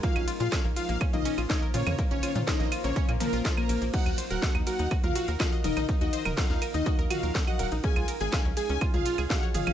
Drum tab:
CC |----------------|----------------|x---------------|----------------|
RD |x-x-x-x-x-x-x-x-|x-x-x-x-x-x-x-x-|x-x-x-x-x-x-x-x-|x-x-x-x-x-x-x-x-|
HH |xxoxx-oxxxoxx-ox|xxoxxxoxxxoxx-ox|xxoxx-oxxxoxx-ox|xxoxx-oxxxoxx-ox|
CL |-x--x---x--x---x|--x---x--x---x--|-x---x--x---x--x|---x--x---x--x--|
SD |----o-------o---|----oo------o---|----o-------o---|----oo------o---|
T2 |---------o----oo|---o------o-----|---------o----oo|---o------o-----|
BD |o---o---o---o---|o---o---o---o---|o---o---o---o---|o---o---o---o---|

CC |----------------|
RD |x-x-x-x-x-x-x-x-|
HH |xxoxx-oxxxoxx-ox|
CL |-x--x---x--x---x|
SD |----o-------o---|
T2 |---------o----oo|
BD |o---o---o---o---|